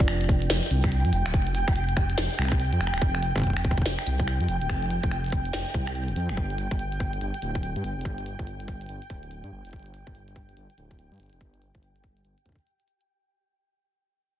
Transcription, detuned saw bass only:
0, 0, Header, 1, 2, 480
1, 0, Start_track
1, 0, Tempo, 419580
1, 1531, Time_signature, 4, 2, 24, 8
1, 16472, End_track
2, 0, Start_track
2, 0, Title_t, "Detuned saw bass"
2, 0, Program_c, 0, 39
2, 0, Note_on_c, 0, 29, 85
2, 543, Note_off_c, 0, 29, 0
2, 571, Note_on_c, 0, 29, 98
2, 691, Note_off_c, 0, 29, 0
2, 811, Note_on_c, 0, 36, 86
2, 1193, Note_off_c, 0, 36, 0
2, 1200, Note_on_c, 0, 41, 80
2, 1274, Note_off_c, 0, 41, 0
2, 1290, Note_on_c, 0, 29, 102
2, 1411, Note_off_c, 0, 29, 0
2, 1439, Note_on_c, 0, 26, 95
2, 1513, Note_off_c, 0, 26, 0
2, 1531, Note_on_c, 0, 29, 99
2, 1875, Note_off_c, 0, 29, 0
2, 1919, Note_on_c, 0, 29, 78
2, 2463, Note_off_c, 0, 29, 0
2, 2491, Note_on_c, 0, 29, 97
2, 2612, Note_off_c, 0, 29, 0
2, 2731, Note_on_c, 0, 36, 87
2, 3113, Note_off_c, 0, 36, 0
2, 3120, Note_on_c, 0, 41, 82
2, 3194, Note_off_c, 0, 41, 0
2, 3211, Note_on_c, 0, 29, 98
2, 3332, Note_off_c, 0, 29, 0
2, 3360, Note_on_c, 0, 26, 89
2, 3434, Note_off_c, 0, 26, 0
2, 3451, Note_on_c, 0, 29, 96
2, 3795, Note_off_c, 0, 29, 0
2, 3840, Note_on_c, 0, 29, 83
2, 4383, Note_off_c, 0, 29, 0
2, 4411, Note_on_c, 0, 29, 93
2, 4532, Note_off_c, 0, 29, 0
2, 4651, Note_on_c, 0, 36, 80
2, 5033, Note_off_c, 0, 36, 0
2, 5040, Note_on_c, 0, 41, 83
2, 5114, Note_off_c, 0, 41, 0
2, 5131, Note_on_c, 0, 29, 96
2, 5252, Note_off_c, 0, 29, 0
2, 5280, Note_on_c, 0, 26, 86
2, 5354, Note_off_c, 0, 26, 0
2, 5371, Note_on_c, 0, 29, 96
2, 5715, Note_off_c, 0, 29, 0
2, 5760, Note_on_c, 0, 29, 80
2, 6304, Note_off_c, 0, 29, 0
2, 6331, Note_on_c, 0, 29, 95
2, 6452, Note_off_c, 0, 29, 0
2, 6571, Note_on_c, 0, 36, 77
2, 6960, Note_on_c, 0, 26, 81
2, 6977, Note_off_c, 0, 36, 0
2, 7034, Note_off_c, 0, 26, 0
2, 7051, Note_on_c, 0, 41, 101
2, 7200, Note_on_c, 0, 26, 86
2, 7218, Note_off_c, 0, 41, 0
2, 7274, Note_off_c, 0, 26, 0
2, 7291, Note_on_c, 0, 31, 97
2, 7635, Note_off_c, 0, 31, 0
2, 7680, Note_on_c, 0, 31, 81
2, 8223, Note_off_c, 0, 31, 0
2, 8252, Note_on_c, 0, 31, 97
2, 8372, Note_off_c, 0, 31, 0
2, 8492, Note_on_c, 0, 26, 81
2, 8873, Note_off_c, 0, 26, 0
2, 8880, Note_on_c, 0, 43, 81
2, 8954, Note_off_c, 0, 43, 0
2, 8971, Note_on_c, 0, 31, 99
2, 9092, Note_off_c, 0, 31, 0
2, 9120, Note_on_c, 0, 29, 88
2, 9194, Note_off_c, 0, 29, 0
2, 9211, Note_on_c, 0, 31, 96
2, 9555, Note_off_c, 0, 31, 0
2, 9600, Note_on_c, 0, 31, 83
2, 10143, Note_off_c, 0, 31, 0
2, 10171, Note_on_c, 0, 31, 92
2, 10292, Note_off_c, 0, 31, 0
2, 10411, Note_on_c, 0, 26, 77
2, 10793, Note_off_c, 0, 26, 0
2, 10800, Note_on_c, 0, 43, 82
2, 10874, Note_off_c, 0, 43, 0
2, 10891, Note_on_c, 0, 31, 100
2, 11011, Note_off_c, 0, 31, 0
2, 11040, Note_on_c, 0, 29, 87
2, 11114, Note_off_c, 0, 29, 0
2, 11131, Note_on_c, 0, 31, 96
2, 11475, Note_off_c, 0, 31, 0
2, 11520, Note_on_c, 0, 31, 80
2, 12063, Note_off_c, 0, 31, 0
2, 12091, Note_on_c, 0, 31, 91
2, 12212, Note_off_c, 0, 31, 0
2, 12331, Note_on_c, 0, 26, 85
2, 12712, Note_off_c, 0, 26, 0
2, 12719, Note_on_c, 0, 43, 82
2, 12793, Note_off_c, 0, 43, 0
2, 12811, Note_on_c, 0, 31, 97
2, 12931, Note_off_c, 0, 31, 0
2, 12959, Note_on_c, 0, 29, 85
2, 13033, Note_off_c, 0, 29, 0
2, 13051, Note_on_c, 0, 31, 93
2, 13395, Note_off_c, 0, 31, 0
2, 13439, Note_on_c, 0, 31, 76
2, 13983, Note_off_c, 0, 31, 0
2, 14011, Note_on_c, 0, 31, 97
2, 14131, Note_off_c, 0, 31, 0
2, 14251, Note_on_c, 0, 38, 82
2, 14372, Note_off_c, 0, 38, 0
2, 16472, End_track
0, 0, End_of_file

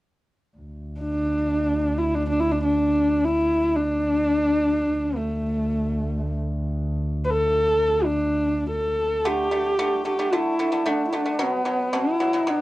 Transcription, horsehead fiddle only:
0, 0, Header, 1, 2, 480
1, 0, Start_track
1, 0, Tempo, 500000
1, 12108, End_track
2, 0, Start_track
2, 0, Title_t, "Horsehead fiddle"
2, 0, Program_c, 0, 110
2, 957, Note_on_c, 0, 62, 75
2, 1903, Note_on_c, 0, 64, 70
2, 1917, Note_off_c, 0, 62, 0
2, 2060, Note_on_c, 0, 62, 74
2, 2074, Note_off_c, 0, 64, 0
2, 2181, Note_off_c, 0, 62, 0
2, 2198, Note_on_c, 0, 62, 71
2, 2302, Note_on_c, 0, 64, 79
2, 2316, Note_off_c, 0, 62, 0
2, 2412, Note_on_c, 0, 62, 74
2, 2426, Note_off_c, 0, 64, 0
2, 2530, Note_off_c, 0, 62, 0
2, 2535, Note_on_c, 0, 62, 84
2, 3118, Note_on_c, 0, 64, 89
2, 3132, Note_off_c, 0, 62, 0
2, 3609, Note_on_c, 0, 62, 90
2, 3623, Note_off_c, 0, 64, 0
2, 4959, Note_on_c, 0, 57, 66
2, 4973, Note_off_c, 0, 62, 0
2, 6134, Note_off_c, 0, 57, 0
2, 6955, Note_on_c, 0, 71, 61
2, 7009, Note_on_c, 0, 69, 89
2, 7024, Note_off_c, 0, 71, 0
2, 7723, Note_on_c, 0, 62, 80
2, 7738, Note_off_c, 0, 69, 0
2, 8350, Note_off_c, 0, 62, 0
2, 8355, Note_on_c, 0, 69, 71
2, 8890, Note_on_c, 0, 67, 81
2, 8904, Note_off_c, 0, 69, 0
2, 9660, Note_off_c, 0, 67, 0
2, 9671, Note_on_c, 0, 67, 71
2, 9934, Note_on_c, 0, 64, 75
2, 9948, Note_off_c, 0, 67, 0
2, 10448, Note_on_c, 0, 62, 66
2, 10462, Note_off_c, 0, 64, 0
2, 10624, Note_off_c, 0, 62, 0
2, 10630, Note_on_c, 0, 64, 53
2, 10708, Note_on_c, 0, 62, 75
2, 10722, Note_off_c, 0, 64, 0
2, 10882, Note_off_c, 0, 62, 0
2, 10882, Note_on_c, 0, 62, 60
2, 10975, Note_on_c, 0, 59, 75
2, 10989, Note_off_c, 0, 62, 0
2, 11476, Note_on_c, 0, 64, 77
2, 11491, Note_off_c, 0, 59, 0
2, 11997, Note_on_c, 0, 62, 84
2, 12011, Note_off_c, 0, 64, 0
2, 12108, Note_off_c, 0, 62, 0
2, 12108, End_track
0, 0, End_of_file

